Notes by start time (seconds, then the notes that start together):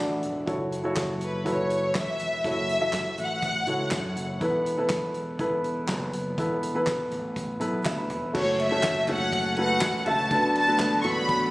Already playing: D3 D4 F#4 A4 D5 D#5 E5 F#5 A5
0.00 A1
0.23 E1, closed hi-hat
0.46 F#1 E4 F#4 A4 C#5, kick, closed hi-hat
0.72 closed hi-hat
0.83 F#1 E4 F#4 A4 C#5
0.96 F#1, kick, snare, clap, closed hi-hat
1.21 B4, closed hi-hat
1.44 E4 F#4 A4 B4, kick, closed hi-hat
1.49 C#5
1.70 closed hi-hat
1.95 E1 E5, kick, snare, clap, closed hi-hat
2.19 E1, closed hi-hat
2.44 F#1 E4 F#4 A4 C#5, kick, closed hi-hat
2.48 E5
2.69 closed hi-hat
2.80 E4 F#4 A4 E5
2.93 kick, snare, clap, closed hi-hat
3.18 A1, closed hi-hat
3.22 F#5
3.42 kick, closed hi-hat
3.67 C#2 E4 F#4 A4 C#5, closed hi-hat
3.91 F#2, kick, snare, clap, closed hi-hat
4.16 F#1, closed hi-hat
4.40 E1 E3 B3 E4 A4 B4, kick, closed hi-hat
4.66 closed hi-hat
4.77 E1 B3 E4 A4 B4
4.90 E1, kick, snare, clap, closed hi-hat
5.14 closed hi-hat
5.39 B3 E4 A4 B4, kick, closed hi-hat
5.64 closed hi-hat
5.88 F#1, kick, snare, clap, closed hi-hat
6.13 F#1, closed hi-hat
6.38 E1 E3 B3 E4 A4 B4, kick, closed hi-hat
6.63 closed hi-hat
6.74 E1 B3 E4 A4 B4
6.87 kick, snare, clap, closed hi-hat
7.11 A1, closed hi-hat, floor tom
7.36 kick, closed hi-hat
7.60 B1 B3 E4 A4 B4, closed hi-hat
7.85 D2 E5, kick, snare, clap, closed hi-hat
7.98 B5
8.10 E1, closed hi-hat, floor tom
8.33 F#1 A3 C#4 F#4 A4 C#5, kick, crash
8.39 C#5
8.59 ride
8.64 E5
8.71 F#1 A3 C#4 F#4 A4 C#5
8.83 F#1, kick, snare, clap, ride
9.07 A3 C#4 F#4 A4 C#5, clap, floor tom, ride
9.13 F#5
9.33 kick, ride
9.57 A3 C#4 F#4 A4 B4 F#5, ride
9.81 E1, kick, snare, clap, ride
10.05 C#2 A3 C#4 F#4 A4 E5 A5, floor tom, ride
10.31 D2 D3 F#3 A3 B3 D4 F#4 A4 B4, kick, ride
10.55 A5, ride
10.67 D2 B3 D4 F#4 A4 B4
10.79 kick, snare, clap, ride
11.01 A1 B3 D4 F#4 A4 C#6, floor tom, ride
11.05 B4 B5
11.29 kick, ride